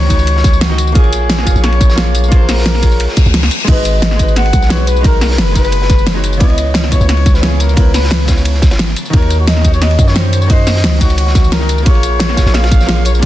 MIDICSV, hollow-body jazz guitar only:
0, 0, Header, 1, 2, 480
1, 0, Start_track
1, 0, Key_signature, 5, "minor"
1, 0, Tempo, 340909
1, 1342, Time_signature, 4, 2, 24, 8
1, 18664, End_track
2, 0, Start_track
2, 0, Title_t, "Hollow-body jazz guitar"
2, 0, Program_c, 0, 26
2, 91, Note_on_c, 0, 51, 80
2, 123, Note_on_c, 0, 63, 70
2, 154, Note_on_c, 0, 66, 75
2, 186, Note_on_c, 0, 73, 87
2, 938, Note_off_c, 0, 51, 0
2, 954, Note_off_c, 0, 63, 0
2, 963, Note_on_c, 0, 51, 84
2, 969, Note_off_c, 0, 66, 0
2, 979, Note_on_c, 0, 63, 76
2, 985, Note_off_c, 0, 73, 0
2, 996, Note_on_c, 0, 66, 75
2, 1011, Note_on_c, 0, 75, 89
2, 1296, Note_on_c, 0, 58, 94
2, 1302, Note_off_c, 0, 51, 0
2, 1310, Note_off_c, 0, 63, 0
2, 1319, Note_off_c, 0, 66, 0
2, 1326, Note_off_c, 0, 75, 0
2, 1327, Note_on_c, 0, 65, 90
2, 1358, Note_on_c, 0, 68, 91
2, 1391, Note_on_c, 0, 73, 105
2, 1996, Note_off_c, 0, 58, 0
2, 2013, Note_on_c, 0, 58, 89
2, 2027, Note_off_c, 0, 65, 0
2, 2043, Note_off_c, 0, 68, 0
2, 2045, Note_on_c, 0, 65, 82
2, 2059, Note_off_c, 0, 73, 0
2, 2078, Note_on_c, 0, 68, 77
2, 2108, Note_on_c, 0, 73, 95
2, 2731, Note_off_c, 0, 58, 0
2, 2746, Note_off_c, 0, 65, 0
2, 2759, Note_on_c, 0, 58, 94
2, 2763, Note_off_c, 0, 68, 0
2, 2775, Note_on_c, 0, 65, 81
2, 2778, Note_off_c, 0, 73, 0
2, 2791, Note_on_c, 0, 68, 79
2, 2807, Note_on_c, 0, 73, 99
2, 3197, Note_off_c, 0, 58, 0
2, 3214, Note_on_c, 0, 58, 92
2, 3231, Note_off_c, 0, 65, 0
2, 3239, Note_off_c, 0, 68, 0
2, 3247, Note_off_c, 0, 73, 0
2, 3247, Note_on_c, 0, 65, 85
2, 3280, Note_on_c, 0, 68, 83
2, 3311, Note_on_c, 0, 72, 102
2, 3917, Note_off_c, 0, 58, 0
2, 3934, Note_on_c, 0, 58, 78
2, 3947, Note_off_c, 0, 65, 0
2, 3964, Note_off_c, 0, 68, 0
2, 3965, Note_on_c, 0, 65, 72
2, 3980, Note_off_c, 0, 72, 0
2, 3997, Note_on_c, 0, 68, 71
2, 4029, Note_on_c, 0, 73, 90
2, 4779, Note_off_c, 0, 58, 0
2, 4795, Note_off_c, 0, 65, 0
2, 4811, Note_off_c, 0, 68, 0
2, 4827, Note_off_c, 0, 73, 0
2, 5133, Note_on_c, 0, 56, 98
2, 5165, Note_on_c, 0, 63, 90
2, 5197, Note_on_c, 0, 66, 89
2, 5228, Note_on_c, 0, 71, 108
2, 5837, Note_off_c, 0, 56, 0
2, 5854, Note_on_c, 0, 56, 89
2, 5866, Note_off_c, 0, 63, 0
2, 5882, Note_off_c, 0, 66, 0
2, 5887, Note_on_c, 0, 63, 79
2, 5898, Note_off_c, 0, 71, 0
2, 5918, Note_on_c, 0, 66, 81
2, 5952, Note_on_c, 0, 71, 90
2, 6571, Note_off_c, 0, 56, 0
2, 6588, Note_off_c, 0, 63, 0
2, 6598, Note_on_c, 0, 56, 89
2, 6603, Note_off_c, 0, 66, 0
2, 6614, Note_on_c, 0, 63, 79
2, 6620, Note_off_c, 0, 71, 0
2, 6630, Note_on_c, 0, 66, 86
2, 6646, Note_on_c, 0, 71, 99
2, 7035, Note_off_c, 0, 56, 0
2, 7052, Note_on_c, 0, 56, 97
2, 7067, Note_off_c, 0, 63, 0
2, 7079, Note_off_c, 0, 66, 0
2, 7084, Note_on_c, 0, 63, 88
2, 7087, Note_off_c, 0, 71, 0
2, 7115, Note_on_c, 0, 66, 86
2, 7148, Note_on_c, 0, 70, 100
2, 7756, Note_off_c, 0, 56, 0
2, 7773, Note_on_c, 0, 56, 76
2, 7786, Note_off_c, 0, 63, 0
2, 7801, Note_off_c, 0, 66, 0
2, 7804, Note_on_c, 0, 63, 75
2, 7818, Note_off_c, 0, 70, 0
2, 7837, Note_on_c, 0, 66, 73
2, 7869, Note_on_c, 0, 71, 85
2, 8619, Note_off_c, 0, 56, 0
2, 8634, Note_off_c, 0, 63, 0
2, 8641, Note_on_c, 0, 56, 82
2, 8651, Note_off_c, 0, 66, 0
2, 8658, Note_on_c, 0, 63, 79
2, 8667, Note_off_c, 0, 71, 0
2, 8673, Note_on_c, 0, 66, 76
2, 8688, Note_on_c, 0, 73, 93
2, 8970, Note_on_c, 0, 49, 96
2, 8981, Note_off_c, 0, 56, 0
2, 8990, Note_off_c, 0, 63, 0
2, 8997, Note_off_c, 0, 66, 0
2, 9002, Note_on_c, 0, 59, 93
2, 9005, Note_off_c, 0, 73, 0
2, 9034, Note_on_c, 0, 64, 91
2, 9065, Note_on_c, 0, 73, 107
2, 9675, Note_off_c, 0, 49, 0
2, 9692, Note_on_c, 0, 49, 88
2, 9705, Note_off_c, 0, 59, 0
2, 9721, Note_off_c, 0, 64, 0
2, 9724, Note_on_c, 0, 59, 80
2, 9737, Note_off_c, 0, 73, 0
2, 9755, Note_on_c, 0, 64, 82
2, 9787, Note_on_c, 0, 73, 99
2, 10410, Note_off_c, 0, 49, 0
2, 10426, Note_off_c, 0, 59, 0
2, 10437, Note_on_c, 0, 49, 95
2, 10442, Note_off_c, 0, 64, 0
2, 10453, Note_on_c, 0, 59, 85
2, 10458, Note_off_c, 0, 73, 0
2, 10468, Note_on_c, 0, 64, 80
2, 10485, Note_on_c, 0, 73, 98
2, 10874, Note_off_c, 0, 49, 0
2, 10891, Note_on_c, 0, 49, 95
2, 10906, Note_off_c, 0, 59, 0
2, 10918, Note_off_c, 0, 64, 0
2, 10923, Note_on_c, 0, 59, 84
2, 10926, Note_off_c, 0, 73, 0
2, 10956, Note_on_c, 0, 64, 89
2, 10987, Note_on_c, 0, 71, 100
2, 11595, Note_off_c, 0, 49, 0
2, 11612, Note_on_c, 0, 49, 77
2, 11626, Note_off_c, 0, 59, 0
2, 11642, Note_off_c, 0, 64, 0
2, 11644, Note_on_c, 0, 59, 72
2, 11657, Note_off_c, 0, 71, 0
2, 11676, Note_on_c, 0, 64, 71
2, 11708, Note_on_c, 0, 73, 86
2, 12458, Note_off_c, 0, 49, 0
2, 12474, Note_off_c, 0, 59, 0
2, 12490, Note_off_c, 0, 64, 0
2, 12506, Note_off_c, 0, 73, 0
2, 12815, Note_on_c, 0, 51, 98
2, 12846, Note_on_c, 0, 63, 87
2, 12879, Note_on_c, 0, 66, 86
2, 12910, Note_on_c, 0, 73, 108
2, 13515, Note_off_c, 0, 51, 0
2, 13531, Note_on_c, 0, 51, 90
2, 13547, Note_off_c, 0, 63, 0
2, 13563, Note_off_c, 0, 66, 0
2, 13565, Note_on_c, 0, 63, 79
2, 13579, Note_off_c, 0, 73, 0
2, 13596, Note_on_c, 0, 66, 80
2, 13627, Note_on_c, 0, 73, 94
2, 14250, Note_off_c, 0, 51, 0
2, 14267, Note_off_c, 0, 63, 0
2, 14277, Note_on_c, 0, 51, 91
2, 14282, Note_off_c, 0, 66, 0
2, 14293, Note_on_c, 0, 63, 79
2, 14298, Note_off_c, 0, 73, 0
2, 14308, Note_on_c, 0, 66, 84
2, 14324, Note_on_c, 0, 73, 98
2, 14714, Note_off_c, 0, 51, 0
2, 14731, Note_on_c, 0, 51, 95
2, 14746, Note_off_c, 0, 63, 0
2, 14758, Note_off_c, 0, 66, 0
2, 14763, Note_on_c, 0, 63, 82
2, 14766, Note_off_c, 0, 73, 0
2, 14795, Note_on_c, 0, 66, 87
2, 14826, Note_on_c, 0, 72, 104
2, 15435, Note_off_c, 0, 51, 0
2, 15452, Note_on_c, 0, 51, 79
2, 15465, Note_off_c, 0, 63, 0
2, 15482, Note_off_c, 0, 66, 0
2, 15484, Note_on_c, 0, 63, 72
2, 15497, Note_off_c, 0, 72, 0
2, 15515, Note_on_c, 0, 66, 72
2, 15548, Note_on_c, 0, 73, 91
2, 16298, Note_off_c, 0, 51, 0
2, 16314, Note_off_c, 0, 63, 0
2, 16323, Note_on_c, 0, 51, 81
2, 16330, Note_off_c, 0, 66, 0
2, 16339, Note_on_c, 0, 63, 76
2, 16346, Note_off_c, 0, 73, 0
2, 16356, Note_on_c, 0, 66, 78
2, 16370, Note_on_c, 0, 75, 92
2, 16652, Note_on_c, 0, 58, 100
2, 16662, Note_off_c, 0, 51, 0
2, 16670, Note_off_c, 0, 63, 0
2, 16679, Note_off_c, 0, 66, 0
2, 16685, Note_on_c, 0, 65, 93
2, 16686, Note_off_c, 0, 75, 0
2, 16715, Note_on_c, 0, 68, 88
2, 16748, Note_on_c, 0, 73, 107
2, 17354, Note_off_c, 0, 58, 0
2, 17371, Note_on_c, 0, 58, 86
2, 17386, Note_off_c, 0, 65, 0
2, 17401, Note_off_c, 0, 68, 0
2, 17402, Note_on_c, 0, 65, 81
2, 17418, Note_off_c, 0, 73, 0
2, 17435, Note_on_c, 0, 68, 80
2, 17466, Note_on_c, 0, 73, 98
2, 18089, Note_off_c, 0, 58, 0
2, 18105, Note_off_c, 0, 65, 0
2, 18116, Note_on_c, 0, 58, 90
2, 18122, Note_off_c, 0, 68, 0
2, 18133, Note_on_c, 0, 65, 86
2, 18137, Note_off_c, 0, 73, 0
2, 18148, Note_on_c, 0, 68, 84
2, 18164, Note_on_c, 0, 73, 97
2, 18557, Note_off_c, 0, 58, 0
2, 18574, Note_on_c, 0, 58, 96
2, 18590, Note_off_c, 0, 65, 0
2, 18598, Note_off_c, 0, 68, 0
2, 18605, Note_on_c, 0, 65, 91
2, 18606, Note_off_c, 0, 73, 0
2, 18664, Note_off_c, 0, 58, 0
2, 18664, Note_off_c, 0, 65, 0
2, 18664, End_track
0, 0, End_of_file